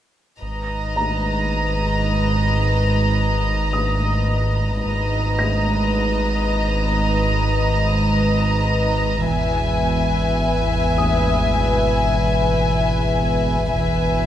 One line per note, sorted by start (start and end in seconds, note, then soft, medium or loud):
0.41 4.82 G#1 medium
0.41 4.82 G#1 soft
0.41 4.81 G#2 soft
0.41 4.81 B4 soft
0.41 4.81 D#5 soft
0.41 4.81 A#5 soft
0.96 4.26 A#5 soft
3.73 7.03 D#6 soft
4.85 9.26 G#1 soft
4.85 9.26 G#1 medium
4.85 9.26 G#2 soft
4.85 9.26 B4 soft
4.85 9.26 D#5 soft
4.85 9.25 A#5 soft
5.39 8.69 A#6 soft
9.29 13.70 E1 soft
9.29 13.70 G#1 medium
9.29 13.70 E2 soft
9.29 13.70 B4 soft
9.29 13.70 E5 soft
9.29 13.70 G#5 soft
10.98 14.26 D#6 soft
13.73 14.26 E1 soft
13.73 14.26 G#1 medium
13.73 14.26 E2 soft
13.73 14.26 B4 soft
13.73 14.26 E5 soft
13.73 14.26 G#5 soft